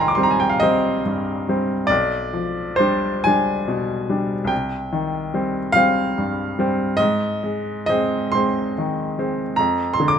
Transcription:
Already playing: C2 D#3 F5 G5 G#5 A#5
0.01 C6
0.08 D6
0.15 G3 C4 C6
0.23 A#5
0.31 G#5
0.40 G5
0.50 F5
0.60 G3 C4 D#5
1.05 G2
1.49 G3 C4
1.87 B1 D5
2.33 F3
2.76 G3 D4 C5
3.24 G3 D4 G#5
3.68 B2
4.09 G3 D4
4.44 C2 G5
4.92 D#3
5.34 G3 C4
5.72 G3 C4 F5
6.18 G2
6.59 G3 C4
6.97 G#2 D#5
7.43 G#3
7.86 G#3 C4 D#5
8.32 G#3 C4 C6
8.78 D#3
9.19 G#3 C4
9.56 F2 A#5
9.94 C6
10.00 D3
10.08 D6

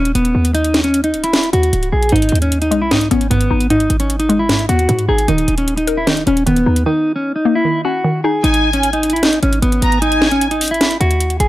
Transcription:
Already playing: D#1 C#4
0.05 closed hi-hat
0.15 D#1 B3, closed hi-hat
0.25 closed hi-hat
0.35 D#2
0.45 closed hi-hat
0.55 D#4, closed hi-hat
0.64 closed hi-hat
0.74 snare, closed hi-hat
0.84 C#4, closed hi-hat
0.94 closed hi-hat
1.04 D#4, closed hi-hat
1.14 C#1, closed hi-hat
1.24 E4, closed hi-hat
1.33 snare, closed hi-hat
1.43 closed hi-hat
1.53 D#2 F#4, closed hi-hat
1.63 closed hi-hat
1.73 C#1, closed hi-hat
1.83 closed hi-hat
1.92 A#1 G#4
2.03 closed hi-hat
2.09 G#1 G#2 D#4, closed hi-hat
2.16 closed hi-hat
2.22 closed hi-hat
2.29 D#2, closed hi-hat
2.35 closed hi-hat
2.42 C#4, closed hi-hat
2.52 closed hi-hat
2.62 D#4, closed hi-hat
2.71 B1 G#3, closed hi-hat
2.82 E4
2.91 G#2 D#4, snare, closed hi-hat
3.01 closed hi-hat
3.11 G#1 B3 C#4, closed hi-hat
3.21 closed hi-hat
3.31 G#1 G#2 B3, closed hi-hat
3.41 closed hi-hat
3.51 G#1 D#4
3.61 closed hi-hat
3.70 G#2 D#4, closed hi-hat
3.80 closed hi-hat
3.90 G#1, closed hi-hat
4.00 C#4, closed hi-hat
4.10 closed hi-hat
4.19 D#4, closed hi-hat
4.29 G#3, closed hi-hat
4.39 E4
4.49 G#2, snare, closed hi-hat
4.59 closed hi-hat
4.69 D#2 B3 F#4, closed hi-hat
4.79 closed hi-hat
4.89 G#2, closed hi-hat
4.99 closed hi-hat
5.08 G#1 D#4 G#4
5.18 closed hi-hat
5.28 D#1 D#3 D#4, closed hi-hat
5.38 closed hi-hat
5.48 D#1, closed hi-hat
5.58 C#4, closed hi-hat
5.68 closed hi-hat
5.77 D#4, closed hi-hat
5.87 A#4, closed hi-hat
5.97 E4
6.07 D#3 D#4, snare, closed hi-hat
6.17 closed hi-hat
6.27 D#1 C#4, closed hi-hat
6.37 closed hi-hat
6.46 D#1 D#3 B3, closed hi-hat
6.56 closed hi-hat
6.66 D#2 D#4
6.76 closed hi-hat
6.86 D#3 D#4
7.16 C#4
7.36 D#4
7.45 A#3
7.55 E4
7.65 D#3
7.85 C#4 F#4
8.04 D#3
8.24 D#4 G#4
8.44 G#1 D#4 G#5, closed hi-hat
8.54 closed hi-hat
8.73 C#4, closed hi-hat
8.83 closed hi-hat
8.93 D#4, closed hi-hat
9.03 closed hi-hat
9.10 E4, closed hi-hat
9.16 closed hi-hat
9.23 D#4, snare, closed hi-hat
9.33 closed hi-hat
9.43 G#1 C#4, closed hi-hat
9.53 closed hi-hat
9.62 G#1 B3, closed hi-hat
9.72 closed hi-hat
9.82 G#1 A#5, closed hi-hat
9.92 closed hi-hat
10.02 D#4 G#5, closed hi-hat
10.12 closed hi-hat
10.22 snare
10.31 C#4, closed hi-hat
10.41 closed hi-hat
10.51 D#4, closed hi-hat
10.61 closed hi-hat, open hi-hat
10.68 E4, closed hi-hat
10.74 closed hi-hat
10.81 snare, closed hi-hat
10.91 closed hi-hat
11.00 D#2 F#4, closed hi-hat
11.11 closed hi-hat
11.20 closed hi-hat
11.30 closed hi-hat
11.40 G#1 G#4, closed hi-hat

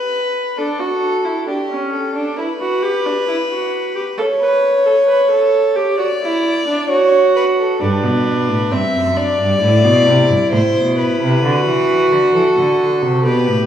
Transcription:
Already playing: B4
0.58 D4 A4
0.79 F#4
1.25 E4
1.48 D4 G4
1.70 C#4
1.93 A4
2.15 D4
2.38 E4 B4
2.61 F#4
2.83 G4
3.06 D4
3.28 E4
3.50 F#4
3.95 G4
4.18 A4 C#5
4.40 B4
4.86 A4
5.08 B4
5.30 A4
5.76 G4
5.99 F#4 D5
6.22 E4
6.67 D4
6.90 F#4 C#5
7.36 B4
7.59 A4
7.80 G2 D4 B4
8.03 B2
8.49 A2
8.71 G2 C4 E5
8.94 F#2
9.17 D4 D5
9.39 G2
9.62 A2 E4
9.84 B2
10.07 C3
10.30 G2
10.52 A2 C5
10.75 B2
10.98 B4
11.21 C3
11.43 D3 F#4
11.66 E3
12.12 D3
12.35 E3 A4
12.57 D3
13.02 C3
13.25 B2 G4 B4
13.48 A2

